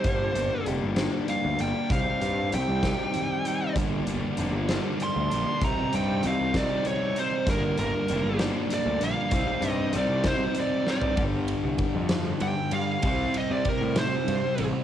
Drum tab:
RD |------------|------------|------------|------------|
HH |x-x-x-x-x-x-|x-x-x-x-x-x-|x-x-x-x-x-x-|x-x-x-x-x-x-|
SD |------o-----|------o-----|------o-----|------o-----|
FT |------------|------------|------------|------------|
BD |o-----------|o-----o-----|o-----------|o-----o-----|

RD |------------|------------|x-x-x-x-x-x-|x-x-x-x-x-x-|
HH |x-x-x-x-x-x-|x-x-x-x-x---|------------|------------|
SD |------o-----|------o---o-|------o-----|------o-----|
FT |------------|-----------o|------------|------------|
BD |o-----------|o-----o-----|o---o-------|o---o-------|